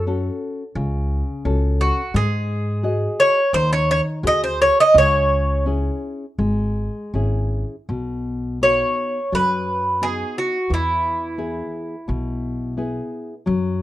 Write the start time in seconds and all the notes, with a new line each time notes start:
Already playing: F#2
0.07 C#4 F#4 A4
0.75 C#2 C#3
1.45 C#2 C#4 F#4 A4
1.81 F#4
2.14 G#2 G#3 G#4
2.83 F#4 G#4 D#5
3.20 C#5
3.53 D#2 D#3 C5
3.73 C#5
3.91 C#5
4.23 D2 F#4 G#4 C5 D#5
4.44 C5
4.62 C#5
4.80 D#5
4.94 C#2 C#3 C#5
5.66 C#4 E4 G#4
6.38 G#1 G#3
7.14 G#1 C#4 E4 G#4
7.89 B1 B2
8.61 B3 D#4 F#4 C#5
9.32 F#2 F#3 B4
10.01 B3 D#4 F#4 G#4
10.38 F#4
10.70 E2 E3
10.74 E4
11.38 B3 E4 G#4
12.08 B1 B2
12.77 B3 E4 G#4
13.46 F#2 F#3